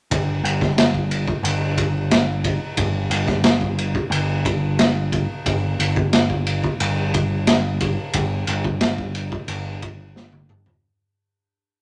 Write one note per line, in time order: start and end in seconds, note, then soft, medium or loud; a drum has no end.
0.11 0.40 G1 medium
0.11 kick loud
0.11 ride medium
0.44 1.30 G1 medium
0.44 ride medium
0.61 kick medium
0.61 snare soft
0.78 snare loud
0.78 ride medium
0.94 kick medium
1.11 ride medium
1.28 kick medium
1.43 2.58 G1 loud
1.43 ride medium
1.78 kick medium
1.78 ride medium
2.11 snare loud
2.11 ride medium
2.44 kick medium
2.44 ride medium
2.77 3.07 G1 medium
2.77 kick loud
2.77 ride medium
3.10 3.97 G1 medium
3.10 ride medium
3.27 kick medium
3.27 snare soft
3.44 snare loud
3.44 ride medium
3.61 kick medium
3.79 ride medium
3.95 kick medium
4.10 5.26 G1 medium
4.10 ride medium
4.45 kick medium
4.45 ride medium
4.79 snare loud
4.79 ride medium
5.12 kick medium
5.12 ride medium
5.46 5.75 G1 medium
5.46 kick medium
5.46 ride medium
5.79 6.66 G1 medium
5.79 ride medium
5.96 kick medium
6.13 snare loud
6.13 ride medium
6.30 kick medium
6.47 ride medium
6.64 kick medium
6.80 7.96 G1 loud
6.80 ride medium
7.14 kick medium
7.14 ride medium
7.47 snare loud
7.47 ride medium
7.80 kick medium
7.80 ride medium
8.13 8.43 G1 medium
8.13 kick loud
8.13 ride medium
8.47 9.35 G1 medium
8.47 ride medium
8.64 kick medium
8.81 snare loud
8.81 ride medium
8.98 kick medium
9.15 ride medium
9.32 kick medium
9.48 10.64 G1 loud
9.48 ride medium
9.82 kick medium
9.82 ride medium
10.16 snare medium
10.32 high tom medium
10.49 mid tom medium
10.66 floor tom medium